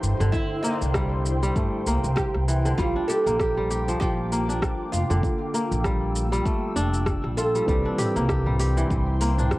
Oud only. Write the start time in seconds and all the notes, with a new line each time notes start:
Already playing: G4
0.32 E4
0.63 D4
2.16 G4
2.78 F4
3.08 A4
4.00 G4
4.92 F4
7.37 A4